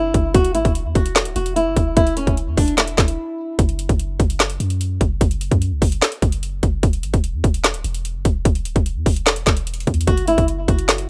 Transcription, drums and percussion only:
0.14 kick, closed hi-hat
0.34 kick, closed hi-hat
0.45 closed hi-hat
0.55 closed hi-hat
0.65 kick, closed hi-hat
0.75 closed hi-hat
0.95 kick, closed hi-hat
1.06 closed hi-hat
1.16 snare, clap, closed hi-hat
1.25 closed hi-hat
1.36 closed hi-hat
1.46 closed hi-hat
1.56 closed hi-hat
1.76 kick, closed hi-hat
1.97 kick, closed hi-hat
2.07 closed hi-hat
2.17 closed hi-hat
2.27 kick, closed hi-hat
2.37 closed hi-hat
2.57 kick, open hi-hat
2.68 closed hi-hat
2.78 snare, clap, closed hi-hat
2.87 closed hi-hat
2.98 kick, snare, clap, closed hi-hat
3.08 closed hi-hat
3.59 kick, closed hi-hat
3.69 closed hi-hat
3.79 closed hi-hat
3.89 kick, closed hi-hat
3.99 closed hi-hat
4.20 kick, closed hi-hat
4.30 closed hi-hat
4.40 snare, clap, closed hi-hat
4.50 closed hi-hat
4.60 closed hi-hat
4.70 closed hi-hat
4.81 closed hi-hat
5.01 kick, closed hi-hat
5.21 kick, closed hi-hat
5.31 closed hi-hat
5.41 closed hi-hat
5.51 kick, closed hi-hat
5.62 closed hi-hat
5.82 kick, open hi-hat
5.92 closed hi-hat
6.02 snare, clap, closed hi-hat
6.12 closed hi-hat
6.22 kick, closed hi-hat
6.32 closed hi-hat
6.43 closed hi-hat
6.63 kick, closed hi-hat
6.83 kick, closed hi-hat
6.93 closed hi-hat
7.03 closed hi-hat
7.14 kick, closed hi-hat
7.24 closed hi-hat
7.44 kick, closed hi-hat
7.54 closed hi-hat
7.64 snare, clap, closed hi-hat
7.74 closed hi-hat
7.84 closed hi-hat
7.94 closed hi-hat
8.05 closed hi-hat
8.25 kick, closed hi-hat
8.45 kick, closed hi-hat
8.55 closed hi-hat
8.65 closed hi-hat
8.76 kick, closed hi-hat
8.86 closed hi-hat
9.06 kick, open hi-hat
9.16 closed hi-hat
9.26 snare, clap, closed hi-hat
9.36 closed hi-hat
9.47 kick, snare, clap, closed hi-hat
9.57 closed hi-hat
9.67 closed hi-hat
9.74 closed hi-hat
9.80 closed hi-hat
9.87 kick, closed hi-hat
9.94 closed hi-hat
10.01 closed hi-hat
10.07 kick, closed hi-hat
10.17 closed hi-hat
10.28 closed hi-hat
10.38 kick, closed hi-hat
10.48 closed hi-hat
10.68 kick, closed hi-hat
10.79 closed hi-hat
10.89 snare, clap, closed hi-hat
10.98 closed hi-hat

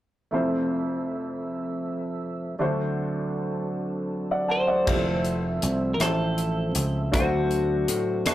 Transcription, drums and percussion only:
4.87 kick, crash
5.25 closed hi-hat
5.62 closed hi-hat
6.00 cross-stick, closed hi-hat
6.38 closed hi-hat
6.75 closed hi-hat
7.14 kick, closed hi-hat
7.51 closed hi-hat
7.88 closed hi-hat
8.26 cross-stick, closed hi-hat

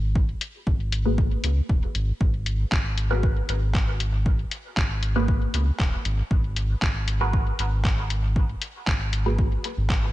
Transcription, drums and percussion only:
0.15 kick
0.41 closed hi-hat
0.67 kick
0.92 closed hi-hat
1.18 kick
1.44 closed hi-hat
1.69 kick
1.95 closed hi-hat
2.21 kick
2.46 closed hi-hat
2.72 kick, clap
2.98 closed hi-hat
3.23 kick
3.49 closed hi-hat
3.75 kick, clap
4.00 closed hi-hat
4.26 kick
4.51 closed hi-hat
4.77 kick, clap
5.03 closed hi-hat
5.28 kick
5.54 closed hi-hat
5.80 kick, clap
6.05 closed hi-hat
6.31 kick
6.56 closed hi-hat
6.82 kick, clap
7.08 closed hi-hat
7.33 kick
7.59 closed hi-hat
7.85 kick, clap
8.10 closed hi-hat
8.36 kick
8.62 closed hi-hat
8.87 kick, clap
9.13 closed hi-hat
9.39 kick
9.64 closed hi-hat
9.90 kick, clap

